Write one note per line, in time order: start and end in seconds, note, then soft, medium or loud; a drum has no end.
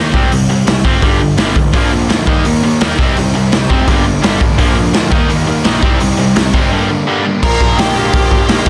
0.00 0.13 D#2 medium
0.00 0.13 D#3 medium
0.00 0.13 A#3 medium
0.00 0.14 D#4 medium
0.13 0.31 C2 medium
0.13 0.30 C3 medium
0.13 0.31 G3 medium
0.13 0.31 C4 medium
0.13 kick loud
0.31 0.48 C2 medium
0.31 0.48 C3 medium
0.31 0.48 G3 medium
0.31 open hi-hat medium
0.49 0.65 C2 medium
0.49 0.66 C3 medium
0.49 0.66 G3 medium
0.66 0.84 C2 medium
0.66 0.83 C3 medium
0.66 0.83 G3 medium
0.66 snare loud
0.66 open hi-hat medium
0.85 1.02 G1 medium
0.85 1.02 C3 medium
0.85 1.02 G3 medium
0.85 1.02 C4 medium
0.85 kick medium
1.02 1.37 G1 medium
1.02 1.20 G2 medium
1.02 1.20 D3 medium
1.02 1.20 G3 medium
1.02 kick loud
1.02 open hi-hat medium
1.21 1.37 G2 medium
1.21 1.37 D3 medium
1.38 1.55 G1 medium
1.38 1.55 G2 medium
1.38 1.56 D3 medium
1.38 1.56 G3 medium
1.38 snare loud
1.38 open hi-hat medium
1.56 1.73 A1 medium
1.56 1.73 G2 medium
1.56 1.73 D3 medium
1.56 kick medium
1.73 2.08 A#1 medium
1.73 2.08 A#2 medium
1.73 2.09 D3 medium
1.73 2.10 F3 loud
1.73 2.10 A#3 medium
1.73 2.10 D4 medium
1.73 kick loud
1.73 open hi-hat medium
1.92 2.08 A#2 medium
1.92 2.08 F3 medium
2.09 2.27 D2 medium
2.09 2.26 A#2 medium
2.09 2.26 D3 medium
2.09 2.27 F3 medium
2.09 2.27 A#3 medium
2.09 2.27 D4 medium
2.09 snare loud
2.09 open hi-hat medium
2.26 2.45 D#2 medium
2.26 2.44 D#3 medium
2.26 2.44 G3 loud
2.26 2.45 A#3 medium
2.26 2.46 D#4 loud
2.26 kick loud
2.45 2.63 D#2 medium
2.45 2.79 D#3 medium
2.45 2.80 G3 medium
2.45 2.81 A#3 medium
2.45 2.81 D#4 loud
2.45 open hi-hat medium
2.63 2.81 D#2 medium
2.63 2.79 D#3 medium
2.63 2.80 A#3 medium
2.80 2.99 D#2 medium
2.80 2.97 D#3 medium
2.80 2.98 G3 medium
2.80 2.98 A#3 medium
2.80 2.98 D#4 medium
2.80 snare loud
2.80 open hi-hat medium
2.98 3.16 C2 medium
2.98 3.15 C3 medium
2.98 3.16 G3 medium
2.98 3.16 C4 loud
2.98 3.17 D#4 loud
2.98 kick loud
3.16 3.34 C2 loud
3.16 3.51 C3 medium
3.16 3.51 G3 medium
3.16 3.52 C4 medium
3.16 3.52 D#4 loud
3.16 open hi-hat medium
3.35 3.52 C2 medium
3.35 3.51 C3 medium
3.35 3.51 G3 medium
3.52 3.70 C2 medium
3.52 3.69 C3 medium
3.52 3.70 G3 medium
3.52 3.70 C4 medium
3.52 3.71 D#4 medium
3.52 snare loud
3.52 open hi-hat soft
3.70 3.87 F1 medium
3.70 3.87 C3 medium
3.70 3.87 G3 medium
3.70 3.87 C4 medium
3.70 3.88 D#4 medium
3.70 kick medium
3.87 4.22 G1 medium
3.87 4.21 G2 medium
3.87 4.23 D3 medium
3.87 4.23 G3 medium
3.87 4.23 A#3 loud
3.87 4.24 D4 loud
3.87 kick loud
3.87 open hi-hat medium
4.04 4.21 G2 medium
4.04 4.21 D3 medium
4.23 4.41 G1 medium
4.23 4.39 G2 medium
4.23 4.40 D3 medium
4.23 4.40 G3 medium
4.23 4.41 A#3 medium
4.23 4.41 D4 loud
4.23 snare loud
4.23 open hi-hat medium
4.40 4.58 A1 medium
4.40 4.57 G2 medium
4.40 4.57 D3 medium
4.40 4.58 G3 medium
4.40 4.58 A#3 medium
4.40 4.58 D4 medium
4.40 kick medium
4.58 4.92 A#1 medium
4.58 4.91 A#2 loud
4.58 4.92 D3 medium
4.58 4.93 F3 loud
4.58 4.93 A#3 loud
4.58 4.94 D4 medium
4.58 kick loud
4.58 open hi-hat medium
4.77 4.93 A#2 medium
4.77 4.93 F3 medium
4.93 5.11 D2 medium
4.93 5.10 A#2 medium
4.93 5.10 D3 medium
4.93 5.11 F3 medium
4.93 5.11 A#3 medium
4.93 5.11 D4 medium
4.93 snare loud
4.93 open hi-hat medium
5.10 5.27 D#2 medium
5.10 5.27 D#3 medium
5.10 5.28 G3 loud
5.10 5.29 A#3 loud
5.10 5.30 D#4 loud
5.10 kick loud
5.28 5.46 D#2 medium
5.28 5.63 D#3 medium
5.28 5.64 G3 medium
5.28 5.65 A#3 loud
5.28 5.65 D#4 loud
5.28 open hi-hat medium
5.47 5.64 D#2 medium
5.47 5.64 D#3 medium
5.47 5.64 A#3 medium
5.64 5.82 A#1 medium
5.64 5.82 D#3 medium
5.64 5.82 G3 medium
5.64 5.82 A#3 medium
5.64 5.83 D#4 medium
5.64 snare loud
5.64 open hi-hat medium
5.83 6.00 C2 medium
5.83 5.99 C3 medium
5.83 6.00 G3 loud
5.83 6.01 C4 loud
5.83 6.01 D#4 loud
5.83 kick loud
6.00 6.18 C2 medium
6.00 6.35 C3 medium
6.00 6.36 G3 medium
6.00 6.36 C4 loud
6.00 6.36 D#4 medium
6.00 open hi-hat medium
6.18 6.36 C2 medium
6.18 6.35 C3 medium
6.18 6.35 G3 medium
6.36 6.53 C2 medium
6.36 6.52 C3 medium
6.36 6.53 G3 medium
6.36 6.54 C4 medium
6.36 6.55 D#4 medium
6.36 snare loud
6.36 open hi-hat medium
6.54 6.71 G1 medium
6.54 6.71 C3 medium
6.54 6.71 G3 medium
6.54 6.72 C4 medium
6.54 6.72 D#4 loud
6.54 kick medium
6.71 7.05 G2 medium
6.71 7.06 D3 loud
6.71 7.06 G3 loud
6.71 7.07 A#3 loud
6.71 7.07 D4 loud
6.89 7.06 G2 medium
6.89 7.06 D3 medium
7.06 7.23 G2 medium
7.06 7.24 D3 medium
7.06 7.24 G3 medium
7.06 7.24 A#3 medium
7.06 7.25 D4 medium
7.24 7.41 G2 medium
7.24 7.42 D3 medium
7.24 7.42 G3 medium
7.24 7.42 A#3 loud
7.24 7.42 D4 medium
7.43 7.55 A#1 loud
7.43 7.77 A#2 loud
7.43 7.78 F3 medium
7.43 7.79 A#3 loud
7.43 7.79 D4 loud
7.43 7.76 A#4 medium
7.43 7.80 A#5 loud
7.43 kick loud
7.43 crash loud
7.60 7.73 A#1 medium
7.60 kick medium
7.77 7.90 A#1 medium
7.77 7.94 A#2 medium
7.77 7.95 F3 medium
7.77 7.96 A#3 medium
7.77 7.96 D4 loud
7.77 8.70 G4 medium
7.77 8.70 G5 medium
7.77 snare loud
7.77 open hi-hat medium
7.95 8.08 A#1 medium
7.95 8.11 A#2 medium
7.95 8.12 F3 medium
7.95 8.13 A#3 loud
7.95 8.13 D4 loud
8.13 8.38 A#1 loud
8.13 8.46 A#2 medium
8.13 8.47 F3 loud
8.13 8.49 A#3 loud
8.13 8.48 D4 loud
8.13 kick loud
8.13 open hi-hat medium
8.31 kick medium
8.48 8.62 A#1 medium
8.48 8.65 A#2 medium
8.48 8.65 F3 medium
8.48 8.67 A#3 loud
8.48 8.66 D4 medium
8.48 snare loud
8.48 open hi-hat medium
8.65 8.70 D#2 loud
8.65 8.70 D#3 loud
8.65 8.70 G3 loud
8.65 kick loud
8.65 crash loud